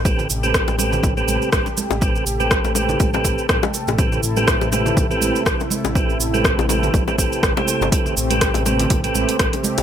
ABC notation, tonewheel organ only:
X:1
M:4/4
L:1/16
Q:"Swing 16ths" 1/4=122
K:Am
V:1 name="Tonewheel organ"
[CGAB]2 z [CGAB]3 [CGAB]3 [CGAB]3 [CGAB] z3 | [CGAB]2 z [CGAB]3 [CGAB]3 [CGAB]3 [CGAB] z3 | [CGAB]2 z [CGAB]3 [CGAB]3 [CGAB]3 [CGAB] z3 | [CGAB]2 z [CGAB]3 [CGAB]3 [CGAB] [CGAB]3 [CGAc]3 |
[CGAB]2 z [CGAB]3 [CGAB]3 [CGAB]3 [CGAB] z3 |]